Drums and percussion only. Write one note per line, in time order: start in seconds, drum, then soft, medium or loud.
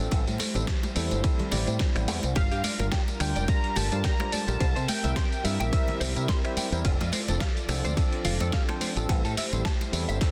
0.11 kick loud
0.11 closed hi-hat medium
0.11 ride medium
0.11 tambourine soft
0.11 muted conga medium
0.27 closed hi-hat soft
0.27 tambourine soft
0.38 open hi-hat loud
0.38 tambourine medium
0.38 muted conga soft
0.38 high conga loud
0.54 closed hi-hat soft
0.54 tambourine soft
0.54 low conga medium
0.67 kick loud
0.67 snare loud
0.67 closed hi-hat medium
0.67 ride medium
0.67 tambourine soft
0.83 closed hi-hat soft
0.83 tambourine soft
0.83 muted conga medium
0.96 open hi-hat loud
0.96 tambourine medium
1.11 closed hi-hat soft
1.11 tambourine soft
1.11 muted conga medium
1.11 high conga medium
1.24 kick loud
1.24 closed hi-hat medium
1.24 ride medium
1.24 tambourine soft
1.39 closed hi-hat soft
1.39 low conga medium
1.51 open hi-hat loud
1.51 tambourine medium
1.51 muted conga medium
1.51 high conga medium
1.51 low conga loud
1.67 closed hi-hat soft
1.67 tambourine soft
1.79 kick loud
1.79 snare loud
1.79 closed hi-hat medium
1.79 ride medium
1.79 tambourine soft
1.79 muted conga soft
1.96 finger snap medium
1.96 closed hi-hat soft
1.96 tambourine soft
2.08 open hi-hat loud
2.08 tambourine medium
2.08 high conga medium
2.23 closed hi-hat soft
2.23 tambourine soft
2.23 muted conga medium
2.35 kick loud
2.35 closed hi-hat medium
2.35 ride medium
2.35 tambourine soft
2.35 muted conga medium
2.52 closed hi-hat soft
2.52 tambourine soft
2.64 open hi-hat loud
2.64 tambourine medium
2.64 high conga loud
2.79 closed hi-hat soft
2.79 tambourine soft
2.79 muted conga medium
2.79 low conga medium
2.92 kick loud
2.92 snare loud
2.92 closed hi-hat medium
2.92 ride medium
2.92 tambourine soft
3.08 closed hi-hat soft
3.08 tambourine soft
3.08 muted conga soft
3.20 finger snap medium
3.20 open hi-hat medium
3.20 tambourine medium
3.36 closed hi-hat soft
3.36 tambourine soft
3.36 high conga medium
3.48 kick loud
3.48 closed hi-hat medium
3.48 ride medium
3.48 tambourine soft
3.48 muted conga medium
3.64 closed hi-hat soft
3.76 open hi-hat loud
3.76 tambourine medium
3.76 muted conga soft
3.76 high conga medium
3.76 low conga medium
3.92 closed hi-hat soft
3.92 tambourine soft
4.04 kick loud
4.04 snare loud
4.04 closed hi-hat medium
4.04 ride medium
4.04 tambourine soft
4.20 finger snap medium
4.20 closed hi-hat soft
4.20 muted conga medium
4.32 open hi-hat medium
4.32 tambourine medium
4.32 high conga medium
4.48 closed hi-hat soft
4.48 tambourine soft
4.48 muted conga soft
4.60 kick loud
4.60 closed hi-hat loud
4.60 ride medium
4.60 tambourine soft
4.76 closed hi-hat soft
4.76 tambourine soft
4.88 open hi-hat loud
4.88 tambourine medium
4.88 muted conga medium
4.88 high conga medium
5.04 closed hi-hat soft
5.04 tambourine soft
5.04 low conga medium
5.16 kick loud
5.16 snare loud
5.16 closed hi-hat medium
5.16 ride medium
5.16 tambourine soft
5.16 muted conga medium
5.32 closed hi-hat soft
5.32 tambourine soft
5.45 open hi-hat medium
5.45 tambourine medium
5.60 closed hi-hat soft
5.60 tambourine soft
5.60 muted conga medium
5.60 high conga medium
5.73 kick loud
5.73 closed hi-hat medium
5.73 ride medium
5.73 tambourine soft
5.88 closed hi-hat soft
5.88 muted conga medium
5.88 low conga medium
6.01 open hi-hat loud
6.01 tambourine medium
6.01 high conga medium
6.01 low conga medium
6.16 closed hi-hat soft
6.16 tambourine soft
6.28 kick loud
6.28 snare loud
6.28 closed hi-hat medium
6.28 ride medium
6.28 muted conga medium
6.45 finger snap medium
6.45 closed hi-hat soft
6.57 open hi-hat medium
6.57 tambourine medium
6.57 muted conga soft
6.57 high conga medium
6.72 closed hi-hat soft
6.72 tambourine soft
6.85 kick loud
6.85 closed hi-hat loud
6.85 ride medium
6.85 tambourine soft
7.01 closed hi-hat soft
7.01 tambourine soft
7.01 muted conga medium
7.12 open hi-hat loud
7.12 tambourine medium
7.12 high conga medium
7.28 closed hi-hat soft
7.28 tambourine soft
7.28 muted conga medium
7.28 low conga medium
7.40 kick loud
7.40 snare loud
7.40 closed hi-hat loud
7.40 ride medium
7.40 tambourine soft
7.57 closed hi-hat soft
7.57 tambourine soft
7.69 finger snap medium
7.69 open hi-hat medium
7.69 tambourine medium
7.69 muted conga medium
7.84 closed hi-hat soft
7.84 tambourine soft
7.84 high conga medium
7.97 kick loud
7.97 closed hi-hat medium
7.97 ride medium
7.97 tambourine soft
7.97 muted conga medium
8.13 closed hi-hat soft
8.25 open hi-hat loud
8.25 tambourine medium
8.25 high conga medium
8.25 low conga medium
8.40 closed hi-hat soft
8.40 tambourine soft
8.40 muted conga medium
8.52 kick loud
8.52 snare loud
8.52 closed hi-hat medium
8.52 ride medium
8.52 tambourine soft
8.69 finger snap medium
8.69 closed hi-hat soft
8.69 muted conga medium
8.81 open hi-hat medium
8.81 tambourine medium
8.81 high conga medium
8.97 closed hi-hat soft
8.97 tambourine soft
9.09 kick loud
9.09 closed hi-hat loud
9.09 ride medium
9.09 tambourine soft
9.09 muted conga medium
9.25 closed hi-hat soft
9.25 tambourine soft
9.37 open hi-hat loud
9.37 tambourine medium
9.37 muted conga medium
9.37 high conga medium
9.53 closed hi-hat soft
9.53 tambourine soft
9.53 low conga medium
9.65 kick loud
9.65 snare loud
9.65 closed hi-hat medium
9.65 ride medium
9.81 closed hi-hat soft
9.81 tambourine soft
9.81 muted conga medium
9.93 open hi-hat medium
9.93 tambourine medium
10.09 closed hi-hat soft
10.09 tambourine soft
10.09 muted conga medium
10.09 high conga medium
10.21 kick loud
10.21 snare medium
10.21 closed hi-hat loud
10.21 ride medium
10.21 tambourine soft